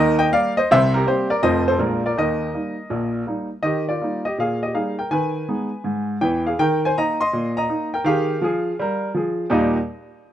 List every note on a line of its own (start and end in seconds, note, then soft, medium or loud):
0.00 0.26 D#2 medium
0.00 0.26 D#3 loud
0.00 0.17 A#4 medium
0.00 0.15 D#5 loud
0.19 0.31 D#5 medium
0.19 0.30 G5 loud
0.31 0.52 G3 soft
0.31 0.52 A#3 medium
0.31 0.55 D5 medium
0.31 0.52 F5 loud
0.57 0.69 C5 medium
0.57 0.67 D#5 medium
0.71 1.01 C2 medium
0.71 1.01 C3 loud
0.71 0.93 C5 medium
0.71 0.90 E5 loud
0.94 1.06 G4 medium
0.94 1.04 A#4 medium
1.07 1.26 G3 medium
1.07 1.27 A#3 soft
1.07 1.27 C4 medium
1.07 1.29 G4 medium
1.07 1.27 C5 medium
1.30 1.42 A#4 medium
1.30 1.41 D5 medium
1.43 1.74 F1 medium
1.43 1.74 F2 medium
1.43 1.63 F3 soft
1.43 1.63 A3 soft
1.43 1.64 C4 soft
1.43 1.65 C5 medium
1.43 1.62 D#5 loud
1.68 1.80 A4 medium
1.68 1.78 C5 medium
1.78 2.10 A#1 medium
1.78 2.10 A#2 medium
1.78 1.99 G#3 soft
1.78 2.00 A#3 soft
1.78 2.00 D4 soft
1.78 2.02 F4 medium
1.78 1.99 A#4 medium
2.06 2.17 A#4 medium
2.06 2.16 D5 medium
2.17 2.48 D#2 medium
2.17 2.48 D#3 medium
2.17 3.24 A#4 medium
2.17 3.11 D#5 medium
2.54 2.74 G3 soft
2.54 2.74 A#3 soft
2.54 2.74 D#4 soft
2.90 3.21 A#1 medium
2.90 3.21 A#2 medium
3.27 3.47 G3 soft
3.27 3.47 A#3 soft
3.27 3.48 D#4 soft
3.63 3.94 D#3 medium
3.63 3.86 G4 medium
3.63 3.83 D#5 medium
3.89 4.23 F4 medium
3.89 4.19 D5 medium
4.01 4.22 G3 soft
4.01 4.21 A#3 soft
4.01 4.22 D#4 soft
4.25 4.37 G4 medium
4.25 4.36 D#5 medium
4.38 4.69 A#2 medium
4.38 4.60 G#4 medium
4.38 4.58 F5 medium
4.63 4.74 G4 soft
4.63 4.73 D#5 medium
4.74 4.94 G3 soft
4.74 4.95 A#3 soft
4.74 4.94 D#4 soft
4.74 4.96 G#4 soft
4.74 4.94 F5 medium
4.99 5.11 A#4 soft
4.99 5.09 G5 medium
5.11 5.42 D#3 medium
5.11 6.18 B4 medium
5.11 6.05 G#5 medium
5.49 5.68 G#3 soft
5.49 5.68 B3 soft
5.49 5.69 D#4 soft
5.84 6.15 G#2 medium
6.21 6.51 E2 medium
6.21 6.51 E3 medium
6.21 6.44 B4 medium
6.21 6.41 G5 medium
6.47 6.58 G#4 medium
6.47 6.57 F5 medium
6.59 6.90 D#3 medium
6.59 6.81 A#4 medium
6.59 6.79 G5 loud
6.85 6.96 C5 medium
6.85 6.95 G#5 medium
6.98 7.17 A#3 soft
6.98 7.17 D#4 soft
6.98 7.19 D#5 medium
6.98 7.17 A#5 loud
7.21 7.54 D#5 medium
7.21 7.51 C6 medium
7.33 7.64 A#2 medium
7.57 7.91 D#5 medium
7.57 7.88 A#5 medium
7.69 7.89 A#3 soft
7.69 7.89 D#4 soft
7.94 8.06 A#4 medium
7.94 8.04 G5 medium
8.04 8.34 D#3 medium
8.04 8.36 G4 medium
8.04 8.43 G#4 medium
8.04 9.00 F5 medium
8.42 8.71 F3 medium
8.42 8.73 G#4 medium
8.79 9.09 G3 medium
8.79 9.10 A#4 medium
9.14 9.45 F3 medium
9.14 9.46 G#4 medium
9.50 9.76 D#2 medium
9.50 9.76 A#2 medium
9.50 9.76 G3 medium
9.50 9.76 A#3 medium
9.50 9.76 D#4 medium
9.50 9.76 G4 medium
9.50 9.77 D#5 medium